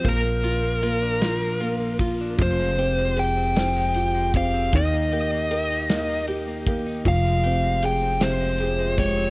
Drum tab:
RD |xxxxxx|xxxxxx|xxxxxx|xxxxxx|
SD |---o--|---o--|---o--|---o--|
BD |o----o|o----o|o----o|o----o|